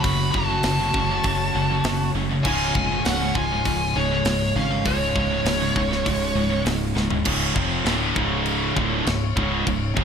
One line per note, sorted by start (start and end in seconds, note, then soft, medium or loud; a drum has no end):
0.00 0.30 F#2 medium
0.00 0.30 C#3 medium
0.00 2.43 F#3 medium
0.00 2.40 A3 medium
0.00 2.43 A3 medium
0.00 2.40 F#4 medium
0.00 0.30 F#4 loud
0.00 7.22 C#5 medium
0.00 0.33 B5 loud
0.00 open hi-hat medium
0.04 0.32 F#1 loud
0.04 3.54 C#4 loud
0.04 2.43 F#4 loud
0.04 kick loud
0.31 0.62 F#1 medium
0.31 0.48 F#2 medium
0.31 0.47 C#3 medium
0.31 2.09 F#4 medium
0.31 2.09 A5 loud
0.31 kick medium
0.48 0.62 F#2 medium
0.48 0.63 C#3 medium
0.63 0.92 F#1 medium
0.63 0.78 F#2 medium
0.63 0.78 C#3 medium
0.63 snare loud
0.63 open hi-hat medium
0.79 0.92 F#2 medium
0.79 0.92 C#3 medium
0.94 1.22 F#1 medium
0.94 1.08 F#2 medium
0.94 1.08 C#3 medium
0.94 kick medium
1.09 1.22 F#2 medium
1.09 1.23 C#3 medium
1.24 1.52 F#1 loud
1.24 1.51 F#2 medium
1.24 1.51 C#3 medium
1.24 kick medium
1.24 open hi-hat medium
1.54 1.83 F#1 medium
1.54 1.69 F#2 medium
1.54 1.68 C#3 medium
1.70 1.84 F#2 medium
1.70 1.84 C#3 medium
1.84 2.13 F#1 loud
1.84 2.11 F#2 medium
1.84 2.12 C#3 medium
1.84 snare loud
1.84 open hi-hat medium
2.15 2.43 F#1 medium
2.15 2.29 F#2 medium
2.15 2.28 C#3 medium
2.29 2.44 F#2 medium
2.29 2.44 C#3 medium
2.44 2.73 C#1 loud
2.44 2.73 C#2 medium
2.44 2.73 G#2 loud
2.44 2.73 C#3 loud
2.44 7.22 F3 medium
2.44 4.85 G#3 loud
2.44 7.22 G#3 medium
2.44 3.01 F4 loud
2.44 4.86 F4 loud
2.44 3.00 G#5 loud
2.44 kick loud
2.44 crash loud
2.75 3.03 F1 medium
2.75 2.90 C#2 medium
2.75 2.89 G#2 medium
2.75 kick medium
2.90 3.04 C#2 medium
2.90 3.04 G#2 medium
3.05 3.34 C#1 medium
3.05 3.19 C#2 medium
3.05 3.19 G#2 loud
3.05 3.33 C#4 medium
3.05 3.35 F#5 loud
3.05 snare loud
3.05 open hi-hat medium
3.20 3.34 C#2 medium
3.20 3.34 G#2 medium
3.35 3.63 C#1 medium
3.35 3.50 C#2 medium
3.35 3.50 G#2 medium
3.35 3.91 F4 medium
3.35 3.97 G#5 loud
3.35 kick medium
3.51 3.64 C#2 medium
3.51 3.65 G#2 medium
3.65 3.93 C#1 loud
3.65 3.92 C#2 medium
3.65 3.92 G#2 medium
3.65 kick medium
3.65 open hi-hat medium
3.96 4.23 C#1 medium
3.96 4.10 C#2 medium
3.96 4.10 G#2 medium
3.96 4.51 G#3 medium
3.96 4.57 C#5 loud
4.11 4.24 C#2 medium
4.11 4.25 G#2 medium
4.25 4.53 C#1 loud
4.25 4.52 C#2 medium
4.25 4.53 G#2 medium
4.25 snare loud
4.25 open hi-hat medium
4.56 4.84 G#1 medium
4.56 4.70 C#2 medium
4.56 4.69 G#2 medium
4.56 4.84 C#4 medium
4.56 4.83 F5 loud
4.70 4.84 C#2 medium
4.70 4.84 G#2 medium
4.85 5.14 C#1 medium
4.85 5.12 C#2 medium
4.85 5.12 G#2 medium
4.85 7.24 C#3 loud
4.85 7.24 G#3 loud
4.85 6.62 G#3 medium
4.85 7.24 F4 loud
4.85 6.62 C#5 medium
4.85 kick loud
4.85 open hi-hat medium
5.15 5.44 C#1 medium
5.15 5.30 C#2 medium
5.15 5.29 G#2 loud
5.15 kick medium
5.31 5.43 C#2 medium
5.31 5.44 G#2 medium
5.44 5.73 C#1 medium
5.44 5.59 C#2 medium
5.44 5.59 G#2 medium
5.44 snare loud
5.44 open hi-hat medium
5.60 5.75 C#2 medium
5.60 5.74 G#2 medium
5.76 6.04 C#1 medium
5.76 5.90 C#2 medium
5.76 5.89 G#2 medium
5.76 kick medium
5.90 6.05 C#2 medium
5.90 6.05 G#2 medium
5.90 snare soft
6.06 6.34 C#1 loud
6.06 6.33 C#2 medium
6.06 6.33 G#2 loud
6.06 kick medium
6.06 open hi-hat medium
6.35 6.64 C#1 medium
6.35 6.49 C#2 medium
6.35 6.49 G#2 medium
6.50 6.64 C#2 medium
6.50 6.64 G#2 medium
6.65 6.94 C#1 medium
6.65 6.92 C#2 medium
6.65 6.93 G#2 medium
6.65 snare loud
6.65 open hi-hat medium
6.95 7.24 C#1 medium
6.95 7.09 C#2 medium
6.95 7.09 G#2 medium
6.95 snare medium
7.10 7.24 C#2 medium
7.10 7.24 G#2 medium
7.10 floor tom loud
7.25 7.54 C#1 medium
7.25 7.54 C#2 loud
7.25 7.55 G#2 loud
7.25 7.55 C#3 loud
7.25 10.04 G#3 medium
7.25 10.04 F4 medium
7.25 10.04 C#5 medium
7.25 kick loud
7.25 crash loud
7.25 crash medium
7.55 7.84 F1 loud
7.55 7.84 F2 loud
7.55 7.85 C3 loud
7.55 7.85 F3 loud
7.55 kick loud
7.85 8.13 D1 medium
7.85 8.14 D2 loud
7.85 8.15 A2 loud
7.85 8.15 D3 loud
7.85 snare loud
7.85 crash medium
8.15 8.72 C#1 loud
8.15 8.74 C#2 loud
8.15 8.75 G#2 medium
8.15 8.75 C#3 loud
8.15 kick loud
8.46 crash medium
8.75 9.04 D1 medium
8.75 9.05 D2 medium
8.75 9.05 A2 loud
8.75 9.05 D3 loud
8.75 kick loud
9.06 9.34 C#1 medium
9.06 9.30 C#2 medium
9.06 9.30 G#2 medium
9.06 snare loud
9.06 crash medium
9.37 9.64 C#1 medium
9.37 9.65 C#2 medium
9.37 9.65 G#2 medium
9.37 9.66 C#3 loud
9.37 kick loud
9.67 9.94 C#1 medium
9.67 9.90 C#2 medium
9.67 9.91 G#2 medium
9.67 kick medium
9.67 crash medium
9.96 10.04 F1 loud
9.96 10.04 F2 loud
9.96 10.04 C3 loud
9.96 10.04 F3 loud
9.96 kick loud